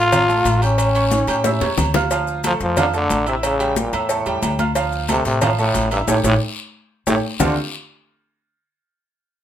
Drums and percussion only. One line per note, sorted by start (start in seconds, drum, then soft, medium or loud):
0.12 cowbell loud
0.12 high conga soft
0.12 low conga medium
0.12 low agogo loud
0.12 long guiro medium
0.12 maracas medium
0.29 high conga soft
0.29 maracas soft
0.45 cowbell medium
0.45 high conga medium
0.45 low agogo medium
0.45 short guiro medium
0.45 maracas medium
0.62 low agogo medium
0.62 short guiro medium
0.62 maracas soft
0.78 cowbell loud
0.78 high conga soft
0.78 low agogo loud
0.78 long guiro medium
0.78 maracas medium
0.95 high conga soft
0.95 low agogo medium
0.95 maracas soft
1.11 cowbell medium
1.11 high conga loud
1.11 high timbale medium
1.11 short guiro medium
1.11 maracas medium
1.27 cowbell medium
1.27 high conga soft
1.27 low agogo loud
1.27 short guiro medium
1.27 maracas soft
1.44 cowbell loud
1.44 high bongo medium
1.44 high conga medium
1.44 low timbale medium
1.44 long guiro medium
1.44 maracas medium
1.61 high bongo medium
1.61 low timbale loud
1.61 low agogo medium
1.61 maracas soft
1.78 cowbell medium
1.78 low bongo loud
1.78 low conga medium
1.78 low timbale medium
1.78 low agogo loud
1.78 short guiro medium
1.78 maracas medium
1.94 cowbell medium
1.94 low bongo loud
1.94 low conga medium
1.94 low timbale loud
1.94 low agogo medium
1.94 short guiro medium
1.94 maracas soft
2.11 cowbell loud
2.11 high conga soft
2.11 low agogo medium
2.11 maracas medium
2.27 high conga soft
2.27 maracas soft
2.44 cowbell medium
2.44 high conga loud
2.44 low agogo loud
2.44 maracas medium
2.60 cowbell medium
2.60 maracas soft
2.77 cowbell loud
2.77 high conga soft
2.77 low conga medium
2.77 low agogo loud
2.77 maracas medium
2.94 maracas soft
3.10 cowbell medium
3.10 high conga medium
3.10 low agogo medium
3.10 maracas medium
3.26 high conga soft
3.26 low agogo medium
3.26 maracas soft
3.43 cowbell loud
3.43 high conga soft
3.43 low agogo loud
3.43 maracas medium
3.60 high conga soft
3.60 low agogo medium
3.60 maracas soft
3.76 cowbell medium
3.76 high conga loud
3.76 maracas medium
3.93 cowbell medium
3.93 high conga soft
3.93 low agogo loud
3.93 maracas soft
4.09 cowbell loud
4.09 high conga soft
4.09 maracas medium
4.26 high conga soft
4.26 low agogo medium
4.26 maracas soft
4.42 cowbell medium
4.42 high conga medium
4.42 low timbale medium
4.42 low agogo loud
4.42 maracas medium
4.59 cowbell medium
4.59 high conga medium
4.59 low agogo medium
4.59 maracas soft
4.75 cowbell loud
4.75 low agogo medium
4.75 long guiro medium
4.75 maracas medium
4.92 high conga soft
4.92 maracas soft
5.08 cowbell medium
5.08 high conga loud
5.08 low agogo loud
5.08 short guiro medium
5.08 maracas medium
5.25 cowbell medium
5.25 short guiro medium
5.25 maracas soft
5.41 cowbell loud
5.41 high conga soft
5.41 low conga medium
5.41 low agogo loud
5.41 long guiro medium
5.41 maracas medium
5.58 high conga soft
5.58 maracas soft
5.75 cowbell medium
5.75 high conga medium
5.75 low agogo medium
5.75 short guiro medium
5.75 maracas medium
5.91 low agogo medium
5.91 short guiro medium
5.91 maracas soft
6.07 cowbell loud
6.07 high conga loud
6.07 high timbale loud
6.07 long guiro loud
6.07 maracas loud
6.24 cowbell loud
6.24 high conga loud
6.24 high timbale loud
6.24 long guiro loud
6.24 maracas loud
7.07 cowbell loud
7.07 high conga loud
7.07 high timbale loud
7.07 long guiro loud
7.07 maracas loud
7.40 low bongo loud
7.40 low conga loud
7.40 low timbale loud
7.40 long guiro loud
7.40 maracas loud